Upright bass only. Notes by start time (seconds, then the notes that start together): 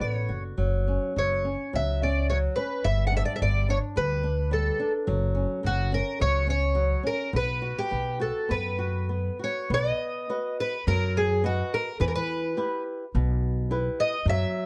0.00 A1
0.29 F#1
0.58 F#1
1.17 F#1
1.74 C#2
2.85 G1
3.42 G1
3.97 D2
5.08 F#1
5.64 F#1
6.21 C#2
7.33 B1
7.92 B1
8.50 F#2
9.70 B1
10.87 F#2
12.00 E2
13.15 B1
14.26 F#2